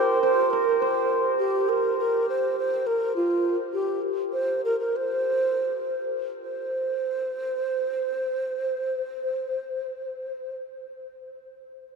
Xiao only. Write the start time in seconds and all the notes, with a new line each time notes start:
Already playing: C5
0.22 C5
0.50 A#4
0.80 C5
1.39 G4
1.69 A#4
1.99 A#4
2.29 C5
2.59 C5
2.86 A#4
3.16 F4
3.73 G4
4.33 C5
4.65 A#4
4.80 A#4
4.96 C5
6.44 C5